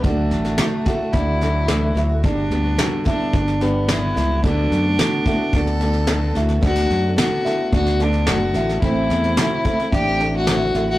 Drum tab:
SD |o-ooo-o-o-o-o-o-|o-o-o-o-ooo-o-o-|o-o-o-o-ooooo-oo|ooo-o-o-ooooo-oo|
BD |o-----o-o-------|o-----o-o-------|o-----o-o-------|o-------o-------|

SD |o-ooo-ooo-o-o-o-|
BD |o-----o-o-------|